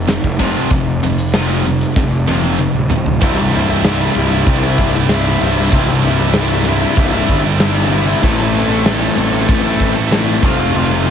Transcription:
Already playing: picked electric bass F1
0.08 distorted electric guitar F2 C3, snare, closed hi-hat
0.24 picked electric bass F1, kick
0.39 picked electric bass F1, distorted electric guitar F2 C3 F3, kick, closed hi-hat
0.56 closed hi-hat
0.71 picked electric bass F1, distorted electric guitar F2 C3, kick, closed hi-hat
1.03 distorted electric guitar F2 C3, closed hi-hat
1.18 closed hi-hat
1.34 distorted electric guitar F2 C3 F3, snare, closed hi-hat
1.65 distorted electric guitar F2 C3, closed hi-hat
1.81 snare, closed hi-hat
1.96 picked electric bass F1, distorted electric guitar F2 C3, kick, snare
2.27 distorted electric guitar F2 C3 F3, high tom
2.43 high tom
2.58 distorted electric guitar F2 C3, mid tom
2.74 picked electric bass D1
2.90 distorted electric guitar F2 C3, floor tom
3.06 floor tom
3.21 picked electric bass C1, distorted electric guitar C2 G2 C3 G3 E4, kick, crash
3.37 muted overdriven electric guitar stroke, snare
3.53 distorted electric guitar G2 C3 G3 E4, ride
3.69 distorted electric guitar C3 G3 E4
3.84 distorted electric guitar C2 G2 C3 G3 E4, snare, ride
4.15 picked electric bass C1, distorted electric guitar G2 C3 G3 E4, ride
4.31 distorted electric guitar C3 G3 E4
4.46 picked electric bass C2, distorted electric guitar G2 C3 G3 E4, kick, ride
4.63 distorted electric guitar C3 G3 E4
4.78 picked electric bass C1, kick, ride
4.94 distorted electric guitar C3 G3 E4, muted overdriven electric guitar stroke
5.09 distorted electric guitar C2 G2 C3 G3 E4, snare, ride
5.41 picked electric bass C1, distorted electric guitar G2 C3 G3 E4, ride
5.57 distorted electric guitar C3 G3 E4
5.71 picked electric bass C1, distorted electric guitar C2 G2 C3 G3 E4, kick, ride
5.88 muted overdriven electric guitar stroke, snare
6.03 distorted electric guitar G2 C3 G3 E4, ride
6.19 distorted electric guitar C3 G3 E4
6.34 distorted electric guitar C2 G2 C3 G3 E4, snare, ride
6.65 distorted electric guitar G2 C3 G3 E4, ride
6.81 distorted electric guitar C3 G3 E4
6.96 picked electric bass C1, distorted electric guitar G2 C3 G3 E4, kick, ride
7.12 distorted electric guitar C3 G3 E4
7.28 picked electric bass G1, kick, ride
7.44 distorted electric guitar C3 G3 E4, muted overdriven electric guitar stroke
7.60 distorted electric guitar C2 G2 C3 G3 E4, snare, ride
7.91 distorted electric guitar G2 C3 G3 E4, ride
8.07 distorted electric guitar C3 G3 E4
8.22 picked electric bass A1, distorted electric guitar A2 E3 A3 C4 E4 A4, kick, ride
8.40 muted overdriven electric guitar stroke, snare
8.53 distorted electric guitar A3 C4 E4 A4, ride
8.69 distorted electric guitar A3 C4 E4 A4
8.85 distorted electric guitar A2 E3 A3 C4 E4 A4, snare, ride
9.17 picked electric bass A1, distorted electric guitar A3 C4 E4 A4, ride
9.32 distorted electric guitar A3 C4 E4 A4
9.49 picked electric bass A1, distorted electric guitar A3 C4 E4 A4, kick, ride
9.64 distorted electric guitar A3 C4 E4 A4
9.80 picked electric bass A1, kick, ride
9.95 distorted electric guitar A3 C4 E4 A4, muted overdriven electric guitar stroke
10.10 distorted electric guitar A2 E3 A3 C4 E4 A4, snare, ride
10.42 picked electric bass F1, distorted electric guitar F2 C3 F3 A3 C4 F4, kick, ride
10.59 distorted electric guitar F3 A3 C4 F4
10.74 picked electric bass F1, distorted electric guitar F2 C3 F3 A3 C4 F4, ride
10.90 muted overdriven electric guitar stroke, snare
11.05 distorted electric guitar F3 A3 C4, ride

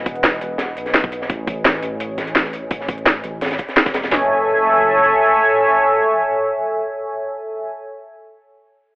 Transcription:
Already playing: detuned saw bass E1, analog synth pad B4 D#5 F#5 G#5
0.06 kick, closed hi-hat
0.16 closed hi-hat
0.24 snare, closed hi-hat
0.41 detuned saw bass E1, closed hi-hat
0.58 snare, closed hi-hat
0.77 detuned saw bass B1, closed hi-hat
0.86 snare, closed hi-hat
0.94 snare, closed hi-hat
1.04 kick
1.12 closed hi-hat
1.22 snare
1.29 detuned saw bass A1, analog synth pad C#5 G#5, kick, closed hi-hat
1.47 kick, closed hi-hat
1.65 snare, closed hi-hat
1.74 closed hi-hat
1.83 detuned saw bass A1, closed hi-hat
2.00 closed hi-hat
2.18 kick, snare, closed hi-hat
2.27 closed hi-hat
2.35 snare, closed hi-hat
2.45 snare
2.53 closed hi-hat
2.71 kick, closed hi-hat
2.81 snare
2.88 kick, closed hi-hat
2.98 closed hi-hat
3.06 snare, closed hi-hat
3.24 detuned saw bass A1, closed hi-hat
3.41 snare, closed hi-hat
3.46 snare, closed hi-hat
3.51 snare, closed hi-hat
3.58 kick, closed hi-hat
3.69 snare, closed hi-hat
3.77 snare, closed hi-hat
3.86 kick, snare, closed hi-hat
3.94 detuned saw bass E1, snare, closed hi-hat
4.03 detuned saw bass E1, snare, closed hi-hat
4.12 detuned saw bass F#1, analog synth pad A4 C#5 E5 G#5, snare, floor tom

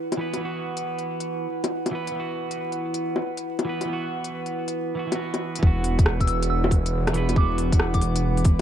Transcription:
Already playing: ambient pad E4 B4 F#5
0.12 closed hi-hat, low bongo
0.17 clean electric guitar E3 B3 B4
0.34 clean electric guitar E3, closed hi-hat, low bongo
0.41 clean electric guitar B3
0.45 clean electric guitar F#4
0.77 closed hi-hat
0.99 closed hi-hat
1.20 closed hi-hat
1.64 closed hi-hat, low bongo
1.86 closed hi-hat, low bongo
1.91 clean electric guitar E3 B3 B4
2.07 closed hi-hat
2.11 clean electric guitar E3
2.16 clean electric guitar B3
2.20 clean electric guitar F#4
2.51 closed hi-hat
2.72 closed hi-hat
2.94 closed hi-hat
3.16 low bongo
3.37 closed hi-hat
3.59 closed hi-hat, low bongo
3.65 clean electric guitar E3 B3
3.69 clean electric guitar B4
3.81 closed hi-hat, low bongo
3.85 clean electric guitar E3
3.89 clean electric guitar B3 F#4
4.24 closed hi-hat
4.46 closed hi-hat
4.68 closed hi-hat
4.95 clean electric guitar E3 B3
4.99 clean electric guitar F#4
5.07 clean electric guitar E3
5.11 clean electric guitar B3 F#4, closed hi-hat, low bongo
5.34 closed hi-hat, low bongo
5.55 clean electric guitar E3, closed hi-hat
5.62 detuned saw bass E1, clean electric guitar B3, ambient pad E4 B4 F#5, kick
5.67 clean electric guitar F#4
5.84 open hi-hat
5.99 kick, closed hi-hat
6.06 cross-stick
6.20 synth bell E6, kick, closed hi-hat
6.28 synth bell E6, open hi-hat
6.43 closed hi-hat
6.50 synth bell E6
6.64 low bongo
6.71 kick, open hi-hat
6.86 closed hi-hat
7.07 cross-stick, closed hi-hat, low bongo
7.13 clean electric guitar E3 B3, open hi-hat
7.17 clean electric guitar B4
7.29 clean electric guitar E3, closed hi-hat, low bongo
7.36 clean electric guitar B3, synth bell D6, kick
7.40 clean electric guitar F#4
7.58 open hi-hat
7.72 kick, closed hi-hat
7.80 cross-stick
7.94 synth bell D6, kick, closed hi-hat
8.01 open hi-hat
8.16 closed hi-hat
8.37 open hi-hat
8.45 kick, open hi-hat

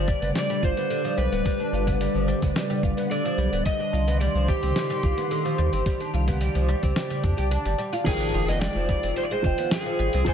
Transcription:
Already playing: sub bass G1, ambient pad D3 G3 D5, electric slide guitar D5
0.08 oud G3, kick, darbuka ka, darbuka tek, shaker
0.22 sub bass G1, oud B3, open hi-hat, darbuka dum, shaker
0.35 oud G3, electric slide guitar D5, snare, open hi-hat, shaker
0.50 oud G3, open hi-hat, shaker
0.63 sub bass G1, oud F4, electric slide guitar C5, kick, shaker
0.77 oud B3, open hi-hat, shaker
0.90 oud D3, open hi-hat, shaker
1.04 oud F3, open hi-hat, darbuka ka, shaker
1.18 sub bass B1, oud G3, electric slide guitar B4, shaker
1.32 sub bass D1, oud B3, open hi-hat, shaker
1.45 oud G3, kick, open hi-hat, shaker
1.60 oud D4, shaker
1.73 sub bass G1, oud F4, darbuka ka, darbuka tek, shaker
1.87 oud B3, kick, open hi-hat, darbuka dum, shaker
2.01 oud G3, open hi-hat, shaker
2.15 sub bass G1, oud F3, shaker
2.28 oud G3, darbuka ka, darbuka tek, shaker
2.42 sub bass G1, oud B3, kick, open hi-hat, darbuka tek, darbuka dum, shaker
2.56 oud G3, snare, open hi-hat, shaker
2.70 oud G3, open hi-hat, darbuka dum, shaker
2.83 sub bass G1, oud F4, kick, shaker
2.97 oud B3, open hi-hat, shaker
3.11 oud D3, electric slide guitar D5, open hi-hat, shaker
3.24 oud F3, open hi-hat, darbuka ka, shaker
3.38 sub bass B1, oud G3, shaker
3.52 sub bass D1, oud B3, open hi-hat, darbuka ka, shaker
3.65 ambient pad D#3 C6, oud G3, electric slide guitar D#5, kick, open hi-hat, shaker
3.80 oud D4, shaker
3.93 sub bass C2, oud F4, darbuka ka, darbuka tek, shaker
4.08 oud B3, open hi-hat, shaker
4.21 oud G3, electric slide guitar D5, open hi-hat, shaker
4.35 sub bass C2, oud F3, shaker
4.48 oud G3, electric slide guitar G4, kick, darbuka ka, darbuka tek, shaker
4.63 sub bass C2, oud C4, open hi-hat, darbuka dum, shaker
4.76 oud G3, snare, open hi-hat, shaker
4.90 oud G3, open hi-hat, shaker
5.03 sub bass C2, oud F4, kick, shaker
5.17 oud B3, open hi-hat, shaker
5.31 oud D3, open hi-hat, shaker
5.45 oud F3, open hi-hat, darbuka ka, shaker
5.58 sub bass D#2, oud G3, shaker
5.73 sub bass G1, oud C4, open hi-hat, shaker
5.86 oud G3, ambient pad D5, kick, open hi-hat, shaker
6.01 oud D4, open hi-hat, shaker
6.14 sub bass C2, oud F4, darbuka ka, darbuka tek, shaker
6.28 oud B3, kick, open hi-hat, darbuka dum, shaker
6.41 oud G3, open hi-hat, shaker
6.55 sub bass C2, oud F3, open hi-hat, shaker
6.68 oud G3, darbuka ka, darbuka tek, shaker
6.83 sub bass C2, oud C4, kick, open hi-hat, darbuka tek, darbuka dum, shaker
6.96 oud G3, snare, open hi-hat, shaker
7.10 oud G3, open hi-hat, darbuka dum, shaker
7.23 sub bass F2, oud D4, kick, shaker
7.37 sub bass C2, oud G4, open hi-hat, shaker
7.51 oud D4, open hi-hat, shaker
7.65 sub bass G1, oud G3, open hi-hat, darbuka ka, shaker
7.78 oud G3, shaker
7.93 oud F4, open hi-hat, darbuka ka, shaker
8.04 felt piano D#3 F3, oud G3, ambient pad F4, electric slide guitar G#4, kick, open hi-hat, crash, impact, shaker
8.08 felt piano G5
8.20 oud D4, shaker
8.34 sub bass F1, oud F4, shaker
8.48 oud B3, electric slide guitar D#5, open hi-hat, shaker
8.61 oud G#3, electric slide guitar D5, snare, open hi-hat, shaker
8.75 sub bass F1, oud F3, shaker
8.89 oud G3, kick, shaker
9.03 sub bass F1, oud C4, open hi-hat, shaker
9.16 oud G3, electric slide guitar C5, open hi-hat, shaker
9.23 electric slide guitar D5
9.31 oud G#3, electric slide guitar C5, shaker
9.42 sub bass F1, felt piano F3 D#5 G5, oud F4, kick, shaker
9.58 oud B3, open hi-hat, shaker
9.71 oud D3, electric slide guitar G#4, snare, open hi-hat, shaker
9.86 oud F3, shaker
9.99 sub bass G#1, oud G3, shaker
10.13 sub bass C2, oud C4, open hi-hat, shaker
10.24 felt piano F3, oud G3, electric slide guitar C5, kick, open hi-hat, shaker
10.29 felt piano G#5

